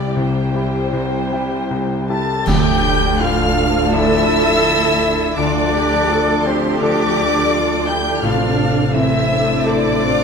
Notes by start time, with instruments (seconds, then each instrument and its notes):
Already playing: grand piano C2 C3 G3 E4 G4, cello section C2, double bass section C2, harp C3 G3 C4 E4 G4 C5 E5 G5, french horn section G3 E4, viola section G3 G4, violin section D5 G5
0.15 grand piano C2 C3, clarinet E4, harp G4, violin section C5, flute G5
0.34 harp C5
0.53 grand piano G3 E4 G4, harp E5
0.73 harp G5
0.92 grand piano C2 C3, harp E5
1.11 harp C5
1.30 grand piano G3 E4 G4, harp E4
1.50 harp C4
1.69 grand piano C2 C3, harp G3
1.89 harp C4
2.08 harp G3, grand piano G3 E4 G4, clarinet A4, flute A5, violin section A5 A6
2.27 harp C4
2.44 double bass section D2, grand piano D2, harp D3, timpani D3, viola section D4 A4, clarinet G4, flute G5, violin section G5 G6, concert bass drum, crash
2.49 french horn section A3 D4
2.69 harp F3
3.19 grand piano A2, clarinet F4, violin section F5 F6, flute F5
3.43 harp D4
3.91 harp D3, grand piano F3 D4 A4, clarinet E4, cello section A4, flute E5, violin section E5 E6
4.16 harp F3
5.36 grand piano D2, double bass section D2, harp D3, french horn section A3 D4, viola section D4 A4, clarinet D4, cello section F4, flute D5, violin section D5 D6
5.61 harp F3
5.74 cello section G4
6.09 grand piano F3, cello section A4
6.44 clarinet C4, cello section G4, flute C5, violin section C5 C6
6.80 harp D3, grand piano F3 D4 A4, clarinet D4, flute D5, violin section D5 D6
7.05 harp F3
7.53 cello section F4
7.76 harp A4
7.87 cello section E4, clarinet G4, flute G5, violin section G5 G6
8.23 double bass section A1, timpani A2, grand piano A2, harp C3, french horn section A3 C4, cello section D4, clarinet F4, viola section A4, flute F5, violin section F5 F6
8.94 grand piano E3, viola section C4, harp C4, cello section C4, clarinet E4, flute E5, violin section E5 E6
9.19 harp C5
9.31 cello section D4
9.42 harp C4
9.66 grand piano A3 C4 A4, clarinet D4, cello section E4, flute D5, violin section D5 D6
10.03 cello section F4